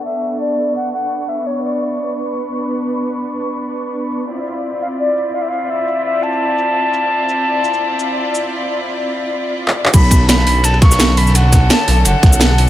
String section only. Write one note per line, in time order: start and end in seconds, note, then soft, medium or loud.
0.00 4.25 B3 medium
0.00 4.25 D4 medium
0.00 1.44 A4 medium
0.00 4.25 C#6 medium
1.47 4.26 B4 medium
4.29 9.90 C4 medium
4.29 9.90 E4 medium
4.29 9.89 F4 medium
4.29 9.90 D5 medium
9.93 12.70 D3 medium
9.93 12.70 C#4 medium
9.93 12.70 A4 medium